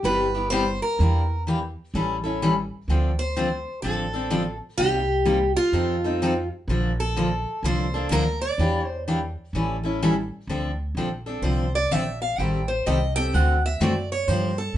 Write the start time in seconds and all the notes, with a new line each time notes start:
0.03 G1 C3 G3 B3 E4 G4 B4
0.34 B3 E4 G4
0.50 C3 G3 B3 E4 G4 C5
0.82 A#4
0.99 E2 E3 A#3 D4 G4
1.47 E3 A#3 D4 G4
1.94 A1 E3 G3 C#4 E4 A4
2.24 C#4 E4 A4
2.42 E3 G3 C#4 E4 A4
2.88 D2 D3 F3 C4 D4 A4
3.19 C5
3.36 D3 F3 C4 D4 A4
3.82 A1 D3 F3 C4 D4 A4
4.13 C4 D4 A4
4.30 D3 F3 C4 D4 A4
4.78 C2 C3 G3 A#3 D#4 G4
5.25 C3 G3 A#3 D#4 G4
5.57 F4
5.72 F2 F3 C4 D#4 A4
6.04 C4 D#4 A4
6.22 F3 C4 D#4 A4
6.68 A#1 D3 F3 A#3 D4 A4
7.00 A4
7.17 D3 F3 A#3 D4 A4
7.63 C2 D3 F3 A#3 D4 A4 C5
7.94 A#3 D4 A4
8.09 D2 D3 F3 A#3 D4 A4 A#4
8.42 D5
8.58 E2 E3 A#3 D4 G4
8.87 C5
9.08 E3 A#3 D4 G4
9.53 A1 E3 G3 C#4 E4 A4
9.83 C#4 E4 A4
10.02 E3 G3 C#4 E4 A4
10.47 D2 D3 F3 C4 D4 A4
10.95 A#1 D3 F3 C4 D4 A4
11.26 C4 D4 A4
11.42 C2 D3 F3 C4 D4 A4 C5
11.75 D5
11.91 A#1 D3 F3 C4 D4 A4 E5
12.22 F5
12.38 A1 D#3 G3 C4 G4 A4 G5
12.68 C5
12.86 C2 D#3 G3 C4 G4 A4 D#5
13.16 C4 G4 A4 G5
13.34 D2 D3 A3 C4 F#4 A4 F#5
13.66 E5
13.80 F#2 D3 A3 C4 F#4 A4 D5
14.12 C#5
14.28 G2 D3 F3 A#3 D4 G4 C5
14.58 A4
14.74 A2